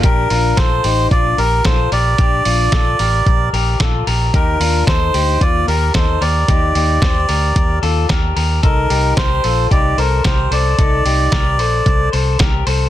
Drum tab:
HH |xoxoxoxo|xoxoxoxo|xoxoxoxo|xoxoxoxo|
SD |--o---o-|--o---o-|--o---o-|--o---o-|
BD |o-o-o-o-|o-o-o-o-|o-o-o-o-|o-o-o-o-|

HH |xoxoxoxo|xoxoxoxo|
SD |--o---o-|--o---o-|
BD |o-o-o-o-|o-o-o-o-|